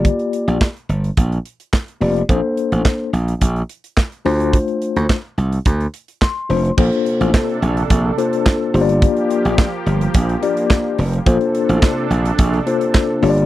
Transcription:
<<
  \new Staff \with { instrumentName = "Tine electric piano" } { \time 4/4 \key bes \major \tempo 4 = 107 << { r1 | r1 | r2. c'''4 | r1 |
r1 | r1 | } \\ { <bes f' g' d''>4 r2 r8 <bes f' g' d''>8 | <bes c' d' a' c''>4. r2 <a d' f' c''>8~ | <a d' f' c''>4 r2 r8 <a d' f' c''>8 | <bes d' f' a' c''>4. r4 <bes d' f' a' c''>4 <bes d' f' g' c'' d''>8~ |
<bes d' f' g' c'' d''>4 r4. <bes d' f' g' d''>4 r8 | <bes d' f' a' c''>4. r4 <bes d' f' a' c''>4 <bes d' f' g' cis'' d''>8 | } >> }
  \new Staff \with { instrumentName = "Analog synth pad" } { \time 4/4 \key bes \major r1 | r1 | r1 | <c d' a'>2.~ <c d' a'>8 <f bes g'>8~ |
<f bes g'>1 | <c d' a'>2.~ <c d' a'>8 <f bes g'>8 | }
  \new Staff \with { instrumentName = "Slap bass" } { \clef bass \time 4/4 \key bes \major r8. bes,,16 r8 g,,8 bes,,8 r4 f,,8 | bes,,16 r8 a,,16 r8 bes,,8 bes,,8 r4 d,8~ | d,16 r8 d,16 r8 c,8 d,8 r4 f,,8 | bes,,16 r8 a,,16 r8 bes,,8 bes,,8 r4 g,,8~ |
g,,16 r8 bes,,16 r8 g,,8 bes,,8 r4 f,,8 | bes,,16 r8 a,,16 r8 bes,,8 bes,,8 r4 g,,8 | }
  \new DrumStaff \with { instrumentName = "Drums" } \drummode { \time 4/4 <hh bd>16 hh16 hh16 hh16 <hc bd sn>16 hh16 hh16 hh16 <hh bd>16 hh16 hh16 hh16 <hc bd sn>16 hh16 hho16 hh16 | <hh bd>8 hh16 hh16 <hc bd sn>8 hh16 hh16 <hh bd>16 hh16 hh16 hh16 <hc bd sn>16 hh16 hho16 hh16 | <hh bd>16 hh16 hh16 hh16 <hc bd sn>8 hh16 hh16 <hh bd>16 hh16 hh16 hh16 <hc bd sn>8 hho16 hh16 | <cymc bd>16 hh16 hh16 hh16 <hc bd sn>16 hh16 hh16 hh16 <hh bd>8 hh16 hh16 <hc bd sn>8 hho16 hh16 |
<hh bd>16 hh16 hh16 hh16 <hc bd sn>8 hh16 hh16 <hh bd>16 hh16 hh16 hh16 <hc bd sn>8 hho16 hh16 | <hh bd>16 hh16 hh16 hh16 <hc bd sn>8 hh16 hh16 <hh bd>16 hh16 hh16 hh16 <hc bd sn>8 hho16 hh16 | }
>>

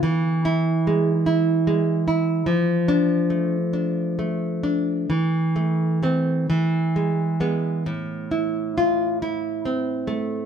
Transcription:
\new Staff \with { instrumentName = "Nylon-string guitar" } { \time 6/8 \key a \minor \tempo 4. = 46 << { r8 e'4 r4. | r8 d'4 r4. | r4 c'8 r4 b8 | r4 f'8 r4. | } \\ { e4 gis8 e'8 gis8 e'8 | f4 a8 d'8 a8 d'8 | e8 a8 a8 e8 gis8 gis8 | a,8 e'4 e'8 c'8 a8 | } >> }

